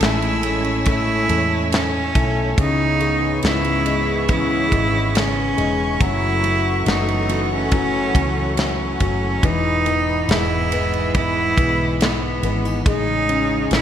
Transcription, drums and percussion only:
0.01 snare, ride
0.22 ride
0.43 ride
0.64 ride
0.85 kick, ride
1.29 ride
1.72 snare, ride
2.15 kick, ride
2.58 kick, ride
3.00 ride
3.43 snare, ride
3.65 ride
3.86 ride
4.28 kick, ride
4.72 kick, ride
5.15 snare, ride
5.58 ride
6.01 kick, ride
6.44 ride
6.86 snare, ride
7.08 ride
7.29 ride
7.71 kick, ride
8.15 kick, ride
8.57 snare, ride
9.00 kick, ride
9.43 kick, ride
9.86 ride
10.29 snare, ride
10.72 ride
10.93 ride
11.14 kick, ride
11.57 kick, ride
12.01 snare, ride
12.43 ride
12.86 kick, ride
13.29 ride
13.71 snare, ride

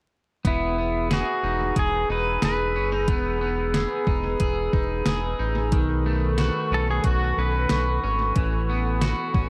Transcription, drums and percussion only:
0.45 kick, closed hi-hat
1.11 snare, closed hi-hat
1.76 kick, closed hi-hat
2.42 snare, closed hi-hat
3.08 kick, closed hi-hat
3.74 snare, closed hi-hat
4.07 kick
4.40 kick, closed hi-hat
4.73 kick
5.06 snare, closed hi-hat
5.72 kick, closed hi-hat
6.38 snare, closed hi-hat
7.04 kick, closed hi-hat
7.69 snare, closed hi-hat
8.36 kick, closed hi-hat
9.01 snare, closed hi-hat
9.34 kick

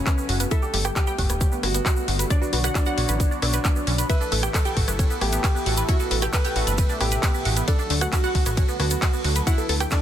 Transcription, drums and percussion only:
0.06 kick, clap, closed hi-hat, shaker
0.18 shaker
0.29 open hi-hat
0.40 closed hi-hat, shaker
0.51 kick, closed hi-hat, shaker
0.62 shaker
0.74 open hi-hat
0.85 cross-stick, closed hi-hat, shaker
0.96 kick, clap, closed hi-hat, shaker
1.07 shaker
1.18 kick, open hi-hat
1.30 cross-stick, closed hi-hat, shaker
1.41 kick, closed hi-hat, shaker
1.52 shaker
1.63 cross-stick, open hi-hat
1.74 closed hi-hat, shaker
1.86 kick, clap, closed hi-hat, shaker
1.96 shaker
2.08 open hi-hat
2.19 closed hi-hat, shaker
2.30 kick, closed hi-hat, shaker
2.43 shaker
2.53 open hi-hat
2.64 cross-stick, closed hi-hat, shaker
2.75 kick, clap, closed hi-hat, shaker
2.86 shaker
2.98 open hi-hat
3.09 closed hi-hat, shaker
3.20 kick, closed hi-hat, shaker
3.31 shaker
3.42 cross-stick, open hi-hat
3.53 closed hi-hat, shaker
3.65 kick, clap, closed hi-hat, shaker
3.76 shaker
3.87 open hi-hat
3.98 closed hi-hat, shaker
4.10 kick, closed hi-hat, ride, shaker
4.22 shaker
4.32 open hi-hat
4.43 cross-stick, closed hi-hat, shaker
4.54 kick, clap, closed hi-hat, ride, shaker
4.65 shaker
4.77 kick, open hi-hat
4.88 cross-stick, closed hi-hat, shaker
4.99 kick, closed hi-hat, ride, shaker
5.11 shaker
5.21 cross-stick, open hi-hat
5.33 closed hi-hat, shaker
5.44 kick, clap, closed hi-hat, ride, shaker
5.57 shaker
5.66 open hi-hat
5.77 closed hi-hat, shaker
5.88 kick, closed hi-hat, ride, shaker
6.00 shaker
6.11 open hi-hat
6.22 cross-stick, closed hi-hat, shaker
6.33 kick, clap, closed hi-hat, ride, shaker
6.45 shaker
6.56 open hi-hat
6.67 closed hi-hat, shaker
6.78 kick, closed hi-hat, ride, shaker
6.89 shaker
7.01 cross-stick, open hi-hat
7.12 closed hi-hat, shaker
7.23 kick, clap, closed hi-hat, ride, shaker
7.34 shaker
7.45 open hi-hat
7.57 closed hi-hat, shaker
7.68 kick, closed hi-hat, ride, shaker
7.79 shaker
7.90 open hi-hat
8.01 cross-stick, closed hi-hat, shaker
8.13 kick, clap, closed hi-hat, ride, shaker
8.24 shaker
8.35 kick, open hi-hat
8.46 cross-stick, closed hi-hat, shaker
8.57 kick, closed hi-hat, ride, shaker
8.69 shaker
8.80 cross-stick, open hi-hat
8.91 closed hi-hat, shaker
9.02 kick, clap, closed hi-hat, ride, shaker
9.13 shaker
9.24 open hi-hat
9.36 closed hi-hat, shaker
9.47 kick, closed hi-hat, ride, shaker
9.58 shaker
9.69 open hi-hat
9.80 cross-stick, closed hi-hat, shaker
9.91 kick, clap, closed hi-hat, ride, shaker

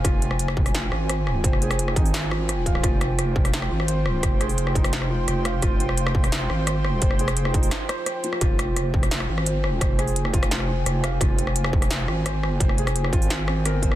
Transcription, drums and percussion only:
0.05 kick, cross-stick, closed hi-hat
0.22 closed hi-hat
0.31 cross-stick
0.39 closed hi-hat
0.48 cross-stick
0.57 kick
0.66 cross-stick, open hi-hat
0.75 snare, closed hi-hat
0.92 cross-stick
1.09 cross-stick, closed hi-hat
1.27 cross-stick
1.44 kick, closed hi-hat
1.53 cross-stick
1.62 closed hi-hat
1.71 cross-stick, open hi-hat
1.79 closed hi-hat
1.88 cross-stick
1.96 kick, closed hi-hat
2.06 open hi-hat
2.14 cross-stick, snare, closed hi-hat
2.31 cross-stick
2.49 cross-stick, closed hi-hat
2.66 kick, closed hi-hat
2.75 cross-stick
2.83 kick, cross-stick, closed hi-hat
3.01 cross-stick, closed hi-hat
3.19 cross-stick, closed hi-hat
3.36 kick
3.45 cross-stick, open hi-hat
3.54 snare, closed hi-hat
3.62 cross-stick
3.80 cross-stick
3.88 closed hi-hat
4.06 cross-stick
4.23 kick, cross-stick, closed hi-hat
4.41 cross-stick, closed hi-hat
4.49 open hi-hat
4.58 closed hi-hat
4.67 cross-stick
4.75 kick, closed hi-hat
4.84 cross-stick, open hi-hat
4.93 snare, closed hi-hat
5.02 cross-stick
5.28 cross-stick, closed hi-hat
5.45 cross-stick, closed hi-hat
5.62 kick, cross-stick, closed hi-hat
5.80 closed hi-hat
5.89 cross-stick
5.98 closed hi-hat
6.07 cross-stick
6.15 kick
6.24 cross-stick, open hi-hat
6.32 snare, closed hi-hat
6.50 cross-stick
6.67 cross-stick, closed hi-hat
6.85 cross-stick
7.02 kick, closed hi-hat
7.11 cross-stick
7.19 closed hi-hat
7.28 cross-stick, open hi-hat
7.37 closed hi-hat
7.45 cross-stick
7.54 kick, closed hi-hat
7.63 open hi-hat
7.71 cross-stick, snare, closed hi-hat
7.89 cross-stick, closed hi-hat
8.06 cross-stick, closed hi-hat
8.24 closed hi-hat
8.33 cross-stick
8.41 kick, cross-stick, closed hi-hat
8.59 cross-stick, closed hi-hat
8.76 cross-stick, closed hi-hat
8.94 kick
9.03 cross-stick, open hi-hat
9.11 snare, closed hi-hat
9.20 cross-stick
9.38 cross-stick
9.46 closed hi-hat
9.64 cross-stick
9.81 kick, cross-stick, closed hi-hat
9.99 cross-stick, closed hi-hat
10.08 open hi-hat
10.16 closed hi-hat
10.25 cross-stick
10.34 kick, closed hi-hat
10.43 cross-stick, open hi-hat
10.51 snare, closed hi-hat
10.60 cross-stick
10.86 cross-stick, closed hi-hat
11.04 cross-stick, closed hi-hat
11.21 kick, cross-stick, closed hi-hat
11.39 closed hi-hat
11.47 cross-stick
11.56 closed hi-hat
11.64 cross-stick
11.73 kick
11.82 cross-stick, open hi-hat
11.91 snare, closed hi-hat
12.08 cross-stick
12.26 cross-stick, closed hi-hat
12.43 cross-stick
12.60 kick, closed hi-hat
12.69 cross-stick
12.78 closed hi-hat
12.87 cross-stick, open hi-hat
12.96 closed hi-hat
13.04 cross-stick
13.13 kick, closed hi-hat
13.22 open hi-hat
13.30 cross-stick, snare, closed hi-hat
13.48 cross-stick
13.66 cross-stick, closed hi-hat
13.83 kick, closed hi-hat
13.92 cross-stick

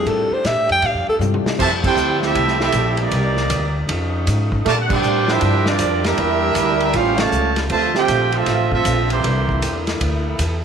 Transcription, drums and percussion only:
0.06 kick, ride
0.45 kick, snare, hi-hat pedal, ride
0.69 ride
0.82 kick, ride
1.21 hi-hat pedal, mid tom
1.34 mid tom
1.46 snare
1.59 kick, crash
1.84 kick, crash
1.97 hi-hat pedal
2.22 snare
2.35 kick, ride
2.48 snare
2.60 snare
2.72 kick, hi-hat pedal, ride
2.97 ride
3.11 kick, ride
3.37 snare
3.50 kick, hi-hat pedal, ride
3.89 kick, ride
4.27 kick, hi-hat pedal, ride
4.52 kick
4.66 kick, snare, ride
4.90 kick, crash
5.03 hi-hat pedal
5.28 snare
5.41 kick, ride
5.66 snare
5.79 kick, hi-hat pedal, ride
6.04 snare, ride
6.18 kick, ride
6.55 kick, hi-hat pedal, ride
6.80 ride
6.93 kick, ride
7.18 snare, ride
7.32 hi-hat pedal
7.56 snare, ride
7.70 kick, ride
7.95 snare
8.08 kick, hi-hat pedal, ride
8.32 ride
8.46 kick, snare, ride
8.72 kick
8.85 kick, hi-hat pedal, ride
9.10 ride
9.24 kick, ride
9.49 kick
9.62 kick, hi-hat pedal, ride
9.87 snare, ride
10.01 kick, ride
10.39 kick, hi-hat pedal, ride

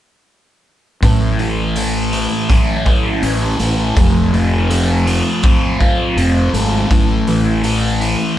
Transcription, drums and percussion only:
1.03 kick, open hi-hat
1.39 open hi-hat
1.76 open hi-hat
2.12 open hi-hat
2.50 kick, open hi-hat
2.86 kick, open hi-hat
3.23 open hi-hat
3.59 open hi-hat
3.97 kick, open hi-hat
4.34 open hi-hat
4.71 open hi-hat
5.07 open hi-hat
5.43 kick, open hi-hat
5.81 kick, open hi-hat
6.18 open hi-hat
6.54 open hi-hat
6.91 kick, open hi-hat
7.27 open hi-hat
7.64 open hi-hat
8.01 open hi-hat

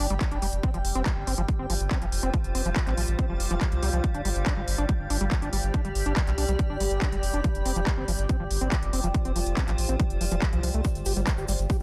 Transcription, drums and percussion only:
0.10 closed hi-hat
0.21 kick, clap, closed hi-hat
0.32 closed hi-hat
0.42 open hi-hat
0.53 closed hi-hat
0.63 kick, closed hi-hat
0.74 closed hi-hat
0.85 open hi-hat
0.95 closed hi-hat
1.06 kick, clap, closed hi-hat
1.27 open hi-hat
1.38 closed hi-hat
1.48 kick, closed hi-hat
1.70 open hi-hat
1.80 closed hi-hat
1.91 kick, clap, closed hi-hat
2.02 closed hi-hat
2.12 open hi-hat
2.23 closed hi-hat
2.34 kick, closed hi-hat
2.44 closed hi-hat
2.55 open hi-hat
2.66 closed hi-hat
2.76 kick, clap, closed hi-hat
2.87 clap, closed hi-hat
2.97 open hi-hat
3.08 closed hi-hat
3.19 kick, closed hi-hat
3.40 open hi-hat
3.51 closed hi-hat
3.61 kick, clap, closed hi-hat
3.72 closed hi-hat
3.83 open hi-hat
3.93 closed hi-hat
4.04 kick, closed hi-hat
4.14 closed hi-hat
4.25 open hi-hat
4.36 closed hi-hat
4.46 kick, clap, closed hi-hat
4.68 open hi-hat
4.78 closed hi-hat
4.89 kick, closed hi-hat
5.10 open hi-hat
5.32 kick, clap, closed hi-hat
5.42 closed hi-hat
5.53 open hi-hat
5.63 closed hi-hat
5.74 kick, closed hi-hat
5.85 closed hi-hat
5.95 open hi-hat
6.06 closed hi-hat
6.17 kick, clap, closed hi-hat
6.27 clap, closed hi-hat
6.38 open hi-hat
6.49 closed hi-hat
6.59 kick, closed hi-hat
6.80 open hi-hat
6.91 closed hi-hat
7.02 kick, clap, closed hi-hat
7.12 closed hi-hat
7.23 open hi-hat
7.34 closed hi-hat
7.44 kick, closed hi-hat
7.55 closed hi-hat
7.66 open hi-hat
7.76 closed hi-hat
7.87 kick, clap, closed hi-hat
8.08 open hi-hat
8.19 closed hi-hat
8.29 kick, closed hi-hat
8.51 open hi-hat
8.61 closed hi-hat
8.72 kick, clap, closed hi-hat
8.83 closed hi-hat
8.93 open hi-hat
9.04 closed hi-hat
9.14 kick, closed hi-hat
9.25 closed hi-hat
9.36 open hi-hat
9.46 closed hi-hat
9.57 kick, clap, closed hi-hat
9.68 clap, closed hi-hat
9.78 open hi-hat
9.89 closed hi-hat
10.00 kick, closed hi-hat
10.10 closed hi-hat
10.21 open hi-hat
10.31 closed hi-hat
10.42 kick, clap, closed hi-hat
10.53 closed hi-hat
10.63 open hi-hat
10.74 closed hi-hat
10.85 kick, closed hi-hat, shaker
10.95 closed hi-hat, shaker
11.06 open hi-hat, shaker
11.17 closed hi-hat, shaker
11.27 kick, clap, closed hi-hat, shaker
11.38 shaker
11.48 open hi-hat, shaker
11.59 closed hi-hat, shaker
11.70 kick, closed hi-hat, shaker

